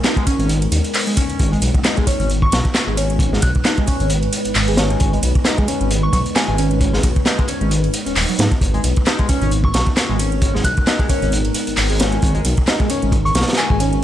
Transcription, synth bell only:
2.42 C#6
2.52 C#6
3.43 F#6
6.03 C#6
6.13 C#6
6.36 G#5
6.48 G#5
9.64 C#6
9.74 C#6
10.64 F#6
13.25 C#6
13.35 C#6
13.57 G#5
13.70 G#5

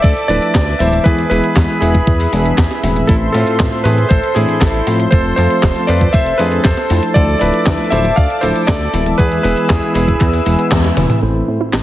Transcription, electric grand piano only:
0.02 A4 D5
0.28 B4 D5
0.79 C5 E5
1.04 G#4 B4
1.30 G#4 B4
1.80 E4 G#4
3.07 E4 A4
3.32 F4 A4
3.84 G#4 B4
4.09 A4 C5
4.35 E4 G#4
4.60 E4 A4
5.11 A4 C5
5.36 A4 C5
5.87 B4 D5
6.13 C5 E5
6.38 G#4 B4
6.64 A4 C5
7.14 A4 D5
7.39 B4 D5
7.90 C5 E5
8.16 D5 F5
8.41 A4 C5
8.67 A4 D5
9.18 G#4 B4
9.43 G#4 B4
9.69 E4 G#4
9.94 E4 G#4

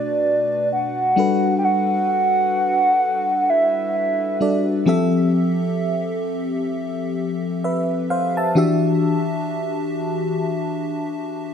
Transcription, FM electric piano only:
Already playing: B2 A3 D4 F#4 B4
1.16 G3 D4 F#4 A4 B4
4.40 G3 D4 F#4 A4 D5
4.86 F3 C4 G4 A4 E5
7.64 B4 E5
8.10 C5 F5
8.37 E5 A5
8.55 E3 D4 F#4 G4 E5

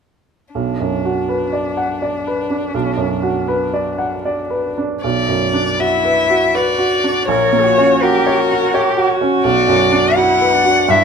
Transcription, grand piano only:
0.55 B1
0.80 F#2
1.05 F#4
1.29 B4
1.53 D5
1.77 F#5
2.02 D5
2.27 B4
2.50 D4
2.74 B1
2.97 F#2
3.23 F#4
3.48 B4
3.74 D5
3.98 F#5
4.25 D5
4.50 B4
4.78 D4
5.04 B1
5.28 F#2
5.54 D4
5.80 F#4
6.04 B4
6.30 F#4
6.55 B4
6.78 F#4
7.04 D4
7.28 A#1
7.53 A#2
7.78 C#4
8.02 F#4
8.27 C#5
8.51 F#4
8.74 C#5
8.97 F#4
9.21 C#4
9.44 B1
9.68 F#2
9.92 D4
10.17 F#4
10.41 B4
10.65 F#4
10.88 G2

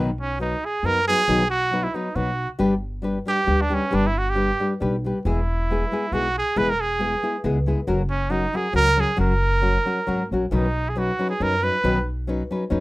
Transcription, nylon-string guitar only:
0.39 F#3 B3 D#4 B4
0.84 F#3 B3 D#4 B4
1.08 F#3 B3 D#4 B4
1.28 B2 D#3 F#3 B3 D#4 B4
1.71 F#3 B3 D#4 B4
1.94 F#3 B3 D#4 B4
2.15 F#3 B3 D#4 B4
2.59 G3 D4 G4 B4
3.02 G3 D4 G4 B4
3.25 G3 D4 G4 B4
3.46 G3 D4 G4 B4
3.69 G3 D4 G4 B4
3.91 G3 D4 G4 B4
4.35 G3 D4 G4 B4
4.60 G3 D4 G4 B4
4.80 G3 D4 G4 B4
5.04 G3 D4 G4 B4
5.25 E3 G#3 B3 E4 G#4
5.70 G#3 B3 E4 G#4
5.92 G#3 B3 E4 G#4
6.12 G#3 B3 E4 G#4
6.56 E3 G#3 B3 E4 G#4
6.99 G#3 B3 E4 G#4
7.23 G#3 B3 E4 G#4
7.44 G#3 B3 E4 G#4
7.66 G#3 B3 E4 G#4
7.87 F#3 C#4 F#4 A#4
8.30 F#3 C#4 F#4 A#4
8.53 F#3 C#4 F#4 A#4
8.73 F#3 C#4 F#4 A#4
8.96 F#3 C#4 F#4 A#4
9.17 F#3 C#4 F#4 A#4
9.62 F#3 C#4 F#4 A#4
9.85 F#3 C#4 F#4 A#4
10.07 F#3 C#4 F#4 A#4
10.32 F#3 C#4 F#4 A#4
10.51 B2 D#3 F#3 C#4 D#4 B4
10.96 F#3 C#4 D#4 B4
11.19 F#3 C#4 D#4 B4
11.40 F#3 C#4 D#4 B4
11.62 F#3 C#4 D#4 B4
11.83 B2 D#3 F#3 C#4 D#4 B4
12.27 F#3 C#4 D#4 B4
12.51 F#3 C#4 D#4 B4
12.70 F#3 C#4 D#4 B4

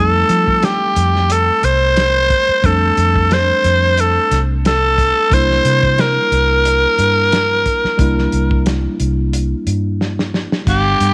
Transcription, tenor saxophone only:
0.00 A4
0.65 G4
1.32 A4
1.65 C5
2.66 A4
3.33 C5
4.00 A4
4.67 A4
5.34 C5
6.01 A#4
10.69 G4

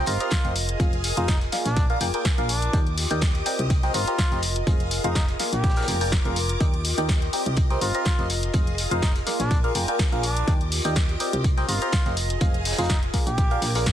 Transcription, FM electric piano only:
0.07 C4 G4 A#4 C5 D#5 A#5
0.20 C4 G4 A#4 C5 D#5 A#5
0.45 G4 A#4 C5 D#5 F5
0.80 F3 F4 G#4 C5 D#5 F5
1.17 F3 F4 G#4 C5 D#5 F5
1.52 A#3 F4 G#4 A#4 D5 F5
1.90 A#3 F4 G#4 A#4 D5 F5
2.01 A#3 F4 G#4 A#4 D5 G5
2.14 A#3 F4 G#4 A#4 D5 G5
2.38 A#3 F4 G#4 A#4 D5 F5
2.73 D#3 G4 A#4 D5 D#5 G5
3.11 D#3 G4 A#4 D5 D#5 G5
3.46 C4 G4 A#4 D5 D#5 G5
3.83 C4 G4 A#4 C5 D#5 G5
3.94 C4 G4 A#4 C5 D#5 A#5
4.08 C4 G4 A#4 C5 D#5 A#5
4.32 G4 A#4 C5 D#5 F5
4.67 F3 F4 G#4 C5 D#5 F5
5.04 F3 F4 G#4 C5 D#5 F5
5.40 A#3 F4 G#4 A#4 D5 F5
5.77 A#3 F4 G#4 A#4 D5 F5
5.88 A#3 F4 G#4 A#4 D5 G5
6.01 A#3 F4 G#4 A#4 D5 G5
6.25 A#3 F4 G#4 A#4 D5 F5
6.60 D#3 G4 A#4 D5 D#5 G5
6.98 D#3 G4 A#4 D5 D#5 G5
7.33 C4 G4 A#4 D5 D#5 G5
7.70 C4 G4 A#4 C5 D#5 G5
7.81 C4 G4 A#4 C5 D#5 A#5
7.95 C4 G4 A#4 C5 D#5 A#5
8.19 G4 A#4 C5 D#5 F5
8.54 F3 F4 G#4 C5 D#5 F5
8.91 F3 F4 G#4 C5 D#5 F5
9.27 A#3 F4 G#4 A#4 D5 F5
9.64 A#3 F4 G#4 A#4 D5 F5
9.75 A#3 F4 G#4 A#4 D5 G5
9.88 A#3 F4 G#4 A#4 D5 G5
10.12 A#3 F4 G#4 A#4 D5 F5
10.48 D#3 G4 A#4 D5 D#5 G5
10.85 D#3 G4 A#4 D5 D#5 G5
11.20 C4 G4 A#4 D5 D#5 G5
11.57 C4 G4 A#4 C5 D#5 G5
11.69 C4 G4 A#4 C5 D#5 A#5
11.82 C4 G4 A#4 C5 D#5 A#5
12.06 G4 A#4 C5 D#5 F5
12.41 F3 F4 G#4 C5 D#5 F5
12.79 F3 F4 G#4 C5 D#5 F5
13.14 A#3 F4 G#4 A#4 D5 F5
13.51 A#3 F4 G#4 A#4 D5 F5
13.75 A#3 F4 G#4 A#4 D5 F5

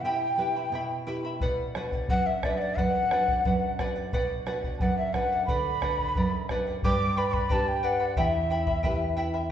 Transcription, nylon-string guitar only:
Already playing: E4 G4 B4
0.05 B2
0.37 E4 G4 B4
0.72 B2
1.07 E4 G4 B4
1.41 B2
1.75 D4 F#4 B4
2.10 F#2
2.44 D4 F#4 B4
2.78 F#2
3.11 D4 F#4 B4
3.45 F#2
3.79 D4 F#4 B4
4.13 B2
4.46 D4 F#4 B4
4.81 F#2
5.14 D4 F#4 B4
5.49 D3
5.82 D4 F#4 B4
6.17 F#2
6.50 D4 F#4 B4
6.85 G2
7.52 D4 G4 B4
8.18 E2
8.85 E4 G4 B4

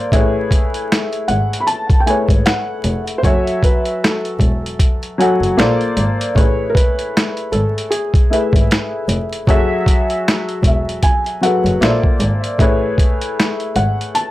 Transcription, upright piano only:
Already playing: A#3 F4 A4 C5 D5
0.12 A3 E4 G#4 B4 C#5
2.06 A3 E4 G#4 B4 C#5
3.24 F#3 F#4 A4 E5 G#5
5.18 F#3 F#4 A4 F#5 G#5
5.57 A#3 F4 A4 C5 D5
6.35 A3 E4 G#4 B4 C#5
8.30 A3 E4 G#4 B4 E5
9.47 F#3 F#4 G#4 A4 E5
11.41 F#3 F#4 G#4 A4 B4
11.81 A#3 F4 A4 C5 D5
12.59 A3 E4 G#4 B4 C#5

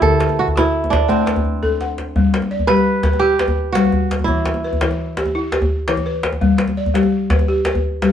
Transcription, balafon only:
Already playing: A5
0.01 D3
0.20 B4
0.56 F#4
1.08 A3 C5
1.26 B4
1.63 A4
1.81 F#5
2.16 G3
2.51 D5
2.69 G3 G4
3.05 B4
3.22 G4
3.40 B4
3.75 G3 B4
4.28 E3
4.64 B4
4.81 E3 E4
5.18 G4
5.35 E4
5.53 G4
5.88 E3 E4
6.06 B4
6.41 G3
6.77 D5
6.94 G3 G4
7.30 B4
7.48 G4
7.66 B4
8.02 G3 G4

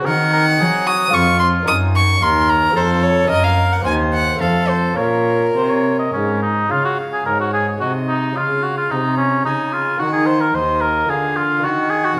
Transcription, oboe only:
0.05 A#4
0.33 A#4
0.60 G#4
0.87 F#4
1.13 F4
2.22 A#4
2.76 A4
3.29 A#4
3.84 C5
4.40 A4
4.97 C#5
5.56 C5
5.70 C#5
5.99 D#5
6.13 C#4
6.42 D#4
6.71 F4
6.85 F#4
7.13 G#4
7.26 A#4
7.40 F#4
7.54 G#4
7.80 F#4
8.08 D#4
8.37 F4
8.63 F#4
8.78 F4
8.91 D#4
9.17 C#4
9.45 D#4
9.73 F4
9.99 F#4
10.12 G#4
10.26 C5
10.41 A#4
10.55 C5
10.81 A#4
11.10 G#4
11.37 F4
11.64 F#4
11.91 G#4
12.05 F#4

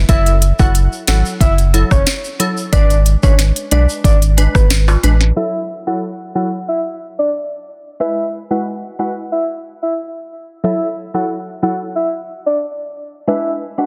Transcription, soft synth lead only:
0.09 E5
0.59 F#5
1.08 F#5
1.41 E5
1.91 C#5
2.72 D5
3.23 C#5
3.72 D5
4.05 D5
4.55 B4
5.37 E5
5.87 F#5
6.35 F#5
6.68 E5
7.19 D5
8.00 E5
8.51 F#5
8.99 F#5
9.32 E5
9.83 E5
10.64 E5
11.14 F#5
11.63 F#5
11.96 E5
12.46 D5
13.28 E5
13.78 F#5

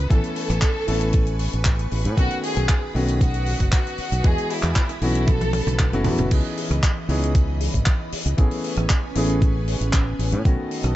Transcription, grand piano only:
0.09 E3 A3 B3 C#4 A4
0.87 E3 A3 B3 C#4 A4
2.17 D#3 A3 B3 C#4 F#4
2.94 D#3 A3 B3 C#4 F#4
4.24 E3 G#3 B3 F#4 D#5
5.02 E3 A3 B3 C#4 F#4
5.93 E3 A3 B3 C#4 F#4
6.06 E3 A3 B3 C#4 F#4
6.31 E3 B3 C#4 D#4 G#4
7.08 E3 B3 C#4 D#4 G#4
8.37 E3 A3 B3 C#4 G#4
9.15 E3 A3 B3 C#4 G#4
10.45 D#3 A3 B3 C#4 F#4

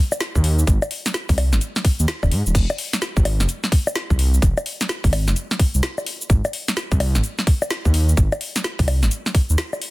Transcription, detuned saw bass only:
0.35 D#2
0.67 G#1
1.29 C2
1.52 G#1
1.99 D#2
2.23 D#1
2.31 G#2
2.46 D#1
2.55 F1
3.17 G#1
3.40 F1
4.10 C2
4.42 F1
5.04 G#1
5.27 F1
5.74 C2
6.30 G#1
6.92 C2
7.15 G#1
7.85 D#2
8.17 G#1
8.79 C2
9.03 G#1
9.50 D#2

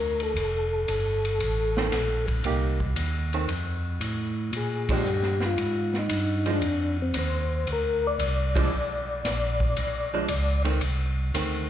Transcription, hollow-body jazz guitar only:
1.78 D#3 A3 C4
2.45 A#3 D#4 G4
3.34 D#3 A3 C4
4.90 F3 G#3 D4
6.46 F3 G#3 D4
8.56 F3 G#3 D4
10.14 F3 G#3 D4
10.65 D#3 A3 C4
11.34 D#3 A3 C4

